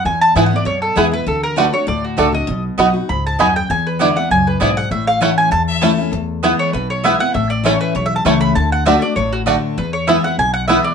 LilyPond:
<<
  \new Staff \with { instrumentName = "Mandolin" } { \time 4/4 \key e \mixolydian \tempo 4 = 197 gis''8 a''8 \tuplet 3/2 { gis''8 fis''8 d''8 } cis''8 a'8 gis'8 b'8 | a'8 bes'8 b'8 cis''8 d''8 fis'8 a'8 dis''8~ | dis''8 r4. b''8 a''8 gis''8 g''8 | gis''8 b'8 d''8 fis''8 gis''8 b'8 d''8 fis''8 |
e''8 f''8 fis''8 gis''8 a''8 r4. | r4. cis''8 b'8 cis''8 e''8 fis''8 | e''8 d''8 cis''8 b'8 \tuplet 3/2 { cis''8 e''8 a''8 } cis'''8 b''8 | a''8 fis''8 e''8 d''8 cis''8 fis'8 r4 |
b'8 cis''8 e''8 fis''8 gis''8 fis''8 e''8 d''8 | }
  \new Staff \with { instrumentName = "Fiddle" } { \time 4/4 \key e \mixolydian r1 | r1 | r1 | r1 |
r2 r8 e''8 a'4 | r1 | r1 | r1 |
r1 | }
  \new Staff \with { instrumentName = "Mandolin" } { \time 4/4 \key e \mixolydian r4 <b e' b' gis''>8 r4. <b e' b' gis''>8 r8 | r4 <a fis' d'' a''>8 r4. <a fis' d'' a''>8 r8 | r4 <b fis' dis'' b''>8 r4. <b fis' dis'' b''>8 r8 | r4 <b e' d'' gis''>8 r4. <b e' d'' gis''>8 r8 |
r4 <a e' cis'' a''>8 r4. <a e' cis'' a''>8 r8 | r4 <b e' b' gis''>8 r4. <b e' b' gis''>8 r8 | r4 <a e' cis'' a''>8 r4. <a e' cis'' a''>8 r8 | r4 <a fis' d'' a''>8 r4. <a fis' d'' a''>8 r8 |
r4 <b e' b' gis''>8 r4. <b e' b' gis''>8 r8 | }
  \new Staff \with { instrumentName = "Five-string banjo" } { \time 4/4 \key e \mixolydian r4 <b e'>8 r4. <b e'>8 r8 | r4 <a d' fis'>8 r4. <a d' fis'>8 r8 | r4 <b dis' fis'>8 r4. <b dis' fis'>8 r8 | r4 <b d' e'>8 r4. <b d' e'>8 r8 |
r4 <a cis' e'>8 r4. <a cis' e'>8 r8 | r4 <b e'>8 r4. <b e'>8 r8 | r4 <a cis' e'>8 r4. <a cis' e'>8 r8 | r4 <a d' fis'>8 r4. <a d' fis'>8 r8 |
r4 <b e'>8 r4. <b e'>8 r8 | }
  \new Staff \with { instrumentName = "Steel-string acoustic guitar" } { \time 4/4 \key e \mixolydian << { r4 <e gis b e'>8 <b e'>8 r4 <e gis b e'>8 <b e'>8 | r4 <d a d' fis'>8 <d' fis'>8 r4 <d a d' fis'>8 <d' fis'>8 | r4 <fis b dis' fis'>8 <dis' fis'>8 r2 | r4 <d gis b e'>8 <b e'>8 r2 |
r4 <e a cis' e'>4 r4 <e a cis' e'>8 <cis' e'>8 | r4 <e gis b e'>4 r4 <e gis b e'>8 <b e'>8 | r4 <e a cis' e'>4 r4 <e a cis' e'>4 | r4 <d a d' fis'>8 <d' fis'>8 r4 <d a d' fis'>4 |
r4 <e gis b e'>8 <b e'>8 r4 <e gis b e'>4 | } \\ { e,2 b,2 | d2 a,2 | b,2 gis,4 fis,4 | e,2 fis,4 gis,4 |
a,2 e,2 | e,2 b,2 | a,2 e,2 | d2 a,2 |
e,2 b,2 | } >> }
  \new Staff \with { instrumentName = "Upright bass" } { \clef bass \time 4/4 \key e \mixolydian e,4 gis,4 fis,4 e,4 | d,2 d,4 cis,4 | b,,4 b,,4 cis,4 dis,4 | e,2 cis,4 b,,4 |
a,,2 e,2 | e,2 b,,2 | a,,2 b,,4 cis,4 | d,2 a,,2 |
e,2 b,,2 | }
>>